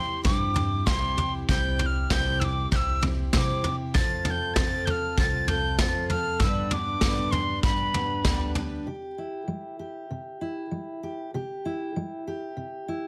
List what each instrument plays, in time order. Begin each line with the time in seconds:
Already playing: twelve-string acoustic guitar C4 E4 G4, tin whistle C6
0.23 upright bass G2, twelve-string acoustic guitar G3 C4 E4 G4, tin whistle D6, kick, floor tom
0.54 twelve-string acoustic guitar C4 E4 G4, floor tom
0.86 upright bass C2, twelve-string acoustic guitar C3 G3 C4 E4 G4, tin whistle C6, kick, snare, floor tom
1.17 twelve-string acoustic guitar C4 E4 G4, floor tom
1.49 upright bass C2, twelve-string acoustic guitar C3 G3 C4 E4 G4, tin whistle G6, kick, floor tom
1.79 twelve-string acoustic guitar C4 E4 G4, tin whistle G6, floor tom
1.86 tin whistle F6
2.10 upright bass C2, twelve-string acoustic guitar C3 G3 C4 E4 G4, tin whistle G6, kick, snare, floor tom
2.40 twelve-string acoustic guitar C4 E4 G4, tin whistle E6, floor tom
2.44 tin whistle D6
2.71 upright bass C2, twelve-string acoustic guitar G3 C4 E4 G4, tin whistle G6, kick, floor tom
2.76 tin whistle E6
3.01 twelve-string acoustic guitar C4 E4 G4, floor tom
3.33 twelve-string acoustic guitar C3 G3 C4 E4 G4, upright bass C3, tin whistle E6, kick, snare, floor tom
3.38 tin whistle D6
3.64 twelve-string acoustic guitar C4 E4 G4, floor tom
3.94 upright bass F2, twelve-string acoustic guitar F3 C4 F4 A4, tin whistle A6, kick, floor tom
4.25 twelve-string acoustic guitar F4 A4, tin whistle A6, floor tom
4.29 twelve-string acoustic guitar C4, tin whistle G6
4.54 upright bass F2, twelve-string acoustic guitar F3 C4, tin whistle A6, kick, snare, floor tom
4.58 twelve-string acoustic guitar F4 A4
4.85 twelve-string acoustic guitar A4, tin whistle G6, floor tom
4.90 twelve-string acoustic guitar C4 F4, tin whistle F6
5.17 upright bass C2, twelve-string acoustic guitar F3 C4 F4, tin whistle A6, kick, floor tom
5.22 twelve-string acoustic guitar A4
5.48 twelve-string acoustic guitar F4 A4, tin whistle G6, floor tom
5.53 twelve-string acoustic guitar C4
5.78 upright bass F2, twelve-string acoustic guitar F3 C4 F4 A4, tin whistle A6, kick, snare, floor tom
6.10 twelve-string acoustic guitar C4 F4 A4, tin whistle F6, floor tom
6.39 upright bass G2, twelve-string acoustic guitar G2 D3 G3 B3 D4, tin whistle E6, kick, floor tom
6.43 twelve-string acoustic guitar B4
6.69 twelve-string acoustic guitar B3 D4 B4, tin whistle D6 E6, floor tom
6.74 twelve-string acoustic guitar G3
7.01 upright bass G2, twelve-string acoustic guitar G2 D3 G3 B3 D4 B4, kick, snare, floor tom
7.31 twelve-string acoustic guitar G3 B3 D4, tin whistle C6, floor tom
7.63 upright bass G2, twelve-string acoustic guitar G3 B3 D4 B4, tin whistle B5, kick, floor tom
7.94 twelve-string acoustic guitar G3 B3 D4 B4, floor tom
8.25 upright bass D2, twelve-string acoustic guitar G2 D3 G3 B3 D4 B4, kick, snare, floor tom
8.55 twelve-string acoustic guitar G3 B3 D4 B4, floor tom
8.86 steel-string acoustic guitar C3 G4
9.18 steel-string acoustic guitar E4
9.48 steel-string acoustic guitar G3
9.79 steel-string acoustic guitar G4
10.10 steel-string acoustic guitar C3
10.41 steel-string acoustic guitar E4
10.71 steel-string acoustic guitar G3
11.03 steel-string acoustic guitar G4
11.34 steel-string acoustic guitar C3 G4
11.65 steel-string acoustic guitar E4
11.96 steel-string acoustic guitar G3
12.27 steel-string acoustic guitar G4
12.57 steel-string acoustic guitar C3
12.88 steel-string acoustic guitar E4